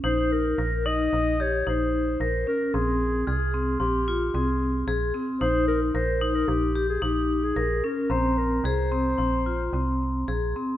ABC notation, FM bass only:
X:1
M:5/4
L:1/8
Q:1/4=111
K:Ebmix
V:1 name="FM bass" clef=bass
B,,,2 B,,,2 B,,,2 B,,,2 B,,, z | B,,,2 C,,2 B,,,2 C,,2 B,,, z | B,,,2 B,,,2 B,,,2 B,,,2 B,,, z | B,,,2 C,,2 B,,,2 C,,2 B,,, z |]